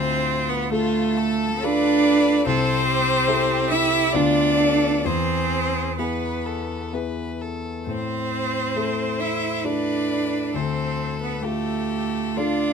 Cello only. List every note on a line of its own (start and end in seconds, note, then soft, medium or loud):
0.00 0.51 C4 loud
0.49 0.72 B3 medium
0.71 1.64 A3 medium
1.63 2.46 D4 loud
2.46 3.73 C4 loud
3.72 4.17 E4 loud
4.15 5.07 D4 loud
5.05 6.00 C4 medium
5.99 6.93 B3 medium
7.87 9.22 C4 medium
9.21 9.66 E4 medium
9.65 10.57 D4 medium
10.55 11.21 C4 medium
11.23 11.43 B3 medium
11.43 12.39 A3 medium
12.38 12.73 D4 medium